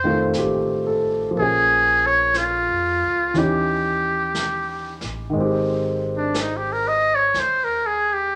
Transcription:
Already playing: F1 C5
0.04 D#3 A3 C4 F4
0.33 A1 G4, brush sweep, snare, hi-hat pedal
0.87 A4
1.31 F3, brush sweep
1.35 A#1 A#3 C#4 G#4
1.42 G#4
2.06 C#5
2.34 F4, brush sweep, snare, hi-hat pedal
2.69 F2
3.03 C#2
3.34 D#2 E3 C#4 D#4, brush sweep, snare
3.38 G4
4.35 brush sweep, snare, hi-hat pedal
5.01 A1, snare
5.30 D#3 G#3
5.34 G#1 C4, brush sweep
5.41 G4
6.17 D4
6.34 brush sweep, snare, hi-hat pedal
6.41 D#4
6.57 G4
6.73 A#4
6.88 D#5
7.15 C#5
7.34 D#2, brush sweep, snare
7.39 C5
7.65 A#4
7.87 G#4
8.14 G4

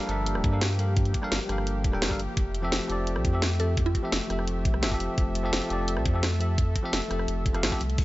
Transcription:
Already playing: F3 A#3 G4
0.00 closed hi-hat
0.06 G1 G3 D4 A4 A#4, open hi-hat
0.11 E5
0.26 closed hi-hat
0.35 D1, cross-stick
0.44 G2, kick, closed hi-hat
0.51 G3 D4 A4 A#4 F5
0.61 snare, closed hi-hat
0.78 G3 D4 A4 A#4 F5, open hi-hat
0.97 kick, closed hi-hat
1.05 closed hi-hat
1.14 kick, closed hi-hat
1.22 G3 D4 A4 A#4 F5, cross-stick
1.32 G1, snare, closed hi-hat
1.41 closed hi-hat
1.47 G1 G3 D4 A4 A#4, cross-stick, open hi-hat
1.52 F5
1.58 cross-stick
1.67 closed hi-hat
1.84 D1, kick, closed hi-hat
1.92 G3 D4 A4 A#4 G5, cross-stick
2.02 G1, snare, closed hi-hat
2.09 G3 D4 A4 A#4 F5, kick
2.19 G1, open hi-hat
2.37 F1 A3 E5, kick, closed hi-hat
2.54 closed hi-hat
2.62 F3 C4 G4 A4 E5
2.72 F1, snare, closed hi-hat
2.81 closed hi-hat
2.87 F1 F3 C4 G4 A4, open hi-hat
2.92 D5
3.07 closed hi-hat
3.16 C2, cross-stick
3.25 F2, kick, closed hi-hat
3.32 F3 C4 G4 A4 E5
3.42 snare, closed hi-hat
3.59 F3 C4 G4 A4 E5, open hi-hat
3.77 kick, closed hi-hat
3.86 F4
3.95 kick, closed hi-hat
4.02 F3 C4 G4 A4 E5
4.12 F1, snare, closed hi-hat
4.21 closed hi-hat
4.27 F1 F3 C4 G4 A4, cross-stick, open hi-hat
4.33 E5
4.39 cross-stick
4.48 closed hi-hat
4.65 C2, kick, closed hi-hat
4.74 cross-stick
4.81 F1 F3 C4 G4 A4 E5, snare, closed hi-hat
4.89 F3 C4 G4 A4, kick
4.94 E5
5.00 F1, open hi-hat
5.18 F1 A4, kick, closed hi-hat
5.35 closed hi-hat
5.43 F3 C4 G4 A4 E5
5.53 F1, snare, closed hi-hat
5.62 closed hi-hat
5.68 F1 F3 C4 G4 A4, open hi-hat
5.73 D5
5.88 closed hi-hat
5.97 C2, cross-stick
6.06 F2, kick, closed hi-hat
6.13 F3 C4 G4 A4 E5
6.23 snare, closed hi-hat
6.39 F3 C4 G4 A4 E5, open hi-hat
6.58 kick, closed hi-hat
6.76 kick, closed hi-hat
6.83 F3 C4 G4 A4 E5
6.93 F1, snare, closed hi-hat
7.02 closed hi-hat
7.08 F1 F3 C4 G4 A4, cross-stick, open hi-hat
7.13 E5
7.19 cross-stick
7.28 F1, closed hi-hat
7.46 kick, closed hi-hat
7.53 F3 C4 G4 A4 F5, cross-stick, closed hi-hat
7.63 A1, snare, closed hi-hat
7.71 F3 C4 G4 A4 E5, kick, snare
7.81 C2, open hi-hat
7.90 closed hi-hat
7.98 G1 F3 A#3 G4, kick, closed hi-hat, crash

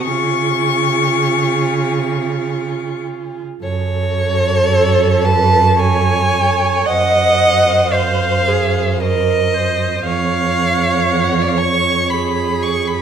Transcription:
0.04 C#3 F4 G#4 C#6
3.61 F#2 A4 C#5
4.72 A4
5.25 B4 A5
5.78 C#5 G#5
6.86 F#2 C5 D#5 F#5
7.92 C5 F5
8.48 G#4
9.00 A#4 D#5
9.55 C5
10.05 F2 C#5 F5
11.24 F#5
11.34 F5
11.42 D5
11.48 F5
11.58 C#6
12.10 G#4 B5
12.63 C#6
12.87 B5

